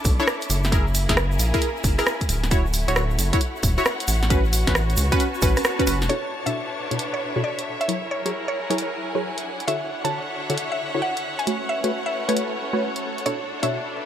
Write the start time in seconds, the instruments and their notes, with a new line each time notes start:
Already playing: violin section C#4 D4 E4 A4, string section E4 A5 D6
0.05 analog synth bass B1, kick, open hi-hat, shaker
0.19 synth stab D4 E4 A4 C#5, shaker
0.27 cross-stick, shaker
0.41 closed hi-hat, shaker
0.50 analog synth bass F#1, open hi-hat, shaker
0.64 snare, closed hi-hat, shaker
0.72 violin section A#3 G#4, synth stab E4 G#4 A#4, kick, closed hi-hat, shaker
0.87 shaker
0.95 open hi-hat, shaker
1.09 analog synth bass F#1, synth stab E4 G#4 A#4, string section G#5, kick, snare, closed hi-hat, shaker
1.17 cross-stick, shaker
1.32 string section A#4, shaker
1.39 analog synth bass A#1, open hi-hat, shaker
1.54 synth stab E4 G#4 A#4, kick, closed hi-hat, shaker
1.61 closed hi-hat, shaker
1.77 shaker
1.84 analog synth bass F#1, kick, open hi-hat, shaker
1.98 synth stab E4 G#4 A#4, cross-stick, open hi-hat, shaker
2.07 cross-stick, shaker
2.21 kick, closed hi-hat, shaker
2.29 analog synth bass D1, violin section A3 E4 F#4, open hi-hat, shaker
2.44 snare, closed hi-hat, shaker
2.51 synth stab E4 F#4 C#5, kick, closed hi-hat, shaker
2.66 shaker
2.73 open hi-hat, shaker
2.88 analog synth bass D1, synth stab E4 F#4 C#5, string section C#5, closed hi-hat, shaker
2.96 cross-stick, shaker
3.10 shaker
3.18 analog synth bass F#1, string section F#5, open hi-hat, shaker
3.33 synth stab E4 F#4 C#5, kick, closed hi-hat, shaker
3.40 closed hi-hat, shaker
3.56 shaker
3.63 analog synth bass D1, kick, open hi-hat, shaker
3.78 synth stab E4 F#4 C#5, shaker
3.85 cross-stick, shaker
4.00 closed hi-hat, shaker
4.08 analog synth bass A1, open hi-hat, shaker
4.22 snare, closed hi-hat, shaker
4.30 violin section B3 C#4, synth stab C#4 F#4 B4, string section F#4, kick, closed hi-hat, shaker
4.45 shaker
4.53 open hi-hat, shaker
4.67 analog synth bass A1, synth stab C#4 F#4 B4, kick, snare, closed hi-hat, shaker
4.75 cross-stick, shaker
4.90 closed hi-hat, shaker
4.97 analog synth bass C#2, open hi-hat, shaker
5.12 synth stab C#4 F#4 B4, string section A5, kick, closed hi-hat, shaker
5.20 closed hi-hat, shaker
5.34 shaker
5.42 analog synth bass A1, synth stab C#4 F#4 B4, kick, open hi-hat, shaker
5.56 cross-stick, open hi-hat, shaker
5.64 cross-stick, shaker
5.79 synth stab C#4 F#4 B4, kick, closed hi-hat, shaker
5.87 analog synth bass F#1, synth stab C#4 F#4 B4, open hi-hat, shaker
6.02 analog synth bass E1, snare, closed hi-hat, shaker
6.09 synth stab B2 D4 E4 F#4 A4 C#5, violin section D4 E4 F#4 A4 C#5, string section D4, synth pluck C#5, closed hi-hat
6.43 synth stab B2 D4 E4 F#4 A4 C#5, string section B4, synth pluck E5, closed hi-hat
6.59 string section E5
6.91 synth stab B2 D4 E4 F#4 A4 C#5, closed hi-hat
6.99 closed hi-hat
7.14 synth pluck C#5
7.36 synth stab B2 D4 E4 F#4 A4 C#5
7.44 synth pluck D5
7.59 closed hi-hat
7.81 synth pluck E5, closed hi-hat
7.88 synth stab F#3 E4 G#4 A#4 C#5, string section E4, violin section G#4 A#4, closed hi-hat
8.07 string section A#4
8.11 synth pluck C#5
8.24 synth stab F#3 E4 G#4 A#4 C#5, string section F#5, closed hi-hat
8.48 synth pluck C#5
8.60 string section G#5
8.70 synth stab F#3 E4 G#4 A#4 C#5, closed hi-hat
8.78 closed hi-hat
9.15 synth stab F#3 E4 G#4 A#4 C#5
9.38 closed hi-hat
9.45 string section D4, violin section F#4 A4 C#5
9.60 string section C#5, closed hi-hat
9.68 synth stab D3 E4 F#4 A4 C#5, synth pluck E5, closed hi-hat
10.00 string section E5
10.04 synth stab D3 E4 F#4 A4 C#5, synth pluck A5, closed hi-hat
10.50 synth stab D3 E4 F#4 A4 C#5, closed hi-hat
10.58 closed hi-hat
10.72 synth pluck E5
10.94 synth stab D3 E4 F#4 A4 C#5
11.02 synth pluck F#5
11.17 closed hi-hat
11.39 synth pluck G#5, closed hi-hat
11.47 violin section A3 E4 F#4 B4, synth stab A3 F#4 B4 C#5, string section C#4, closed hi-hat
11.69 synth pluck E5
11.84 synth stab A3 F#4 B4 C#5, string section A4, closed hi-hat
12.06 synth pluck E5
12.29 synth stab A3 F#4 B4 C#5, closed hi-hat
12.37 closed hi-hat
12.73 synth stab A3 F#4 B4 C#5
12.96 closed hi-hat
13.18 closed hi-hat
13.25 synth stab B2 D4 E4 F#4 A4 C#5, violin section D4 E4 A4, string section D4, synth pluck C#5, closed hi-hat
13.63 synth stab B2 D4 E4 F#4 A4 C#5, synth pluck E5, closed hi-hat
13.96 string section B4